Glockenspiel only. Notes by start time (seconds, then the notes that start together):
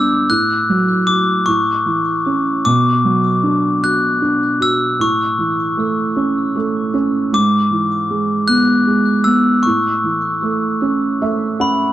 Already playing: E6
0.30 F#6
1.07 D6
1.46 C#6
2.65 D6
3.84 F#6
4.62 E6
5.01 C#6
7.34 D6
8.48 F#6
9.24 E6
9.63 C#6
11.61 B5